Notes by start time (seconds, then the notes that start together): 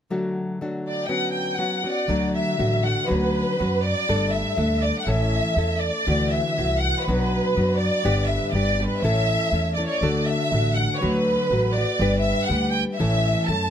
0.10 D3 F#3 A3 D4 F#4
0.61 F#3 A3 D4 F#4
0.87 D5
1.04 G5
1.08 D3 F#3 B3 C#4 F#4 F#5
1.32 G5
1.55 F#3 B3 F#5
1.59 C#4 F#4
1.84 B3 C#4 F#4 D5
2.08 D2 D3 F#3 A3 D4 F#4
2.34 E5
2.58 A1 F#3 A3 D4 F#4
2.84 A3 D4 F#4 F#5
3.07 D2 D3 F#3 B3 C#4 F#4 B4
3.59 F#2 F#3 B3 C#4 F#4
3.83 D5
4.09 G1 G3 A3 D4 A4
4.31 E5
4.57 D2 G3 A3 D4 A4
4.81 D5
4.99 F#5
5.04 A1 A2 E3 A3 C#4 E4 E5
5.08 A4
5.56 E2 A3 C#4 E4 A4
5.79 D5
6.07 D2 D3 E3 A3 E4 F#4
6.30 E5
6.57 C2 E3 A3 E4 F#4
6.78 F#5
7.01 B4
7.07 B1 B2 F#3 B3 D4 F#4
7.56 F#2 F#3 B3 D4 F#4
7.76 D5
8.04 G1 G2 D3 G3 B3 D4 G4
8.26 E5
8.49 G1 D5
8.54 G3 B3 D4 G4
8.79 G3 B3 D4 G4
8.86 B4
8.98 A1 E5
9.04 A2 E3 A3 C#4 E4 A4
9.52 E2 A3 C#4 E4 A4
9.74 A4 D5
9.79 A3 C#4 E4
9.86 C#5 D5
10.01 D2 D3 A3 D4 F#4 A4
10.26 E5
10.52 A1 A3 D4 F#4 A4
10.75 F#5
10.95 B4 C#5
11.01 D2 D3 F#3 A3 F#4 B4
11.50 A1 F#3 A3 F#4 B4
11.72 D5
11.77 A3 F#4 B4
11.99 G1 G3 D4 G4 B4
12.20 E5
12.45 F#5
12.50 D2 G3 D4 G4 B4
12.71 G5
12.94 E5
12.99 A1 A2 E3 A3 C#4 E4 A4
13.45 F#2 A3 A5
13.49 C#4 E4 A4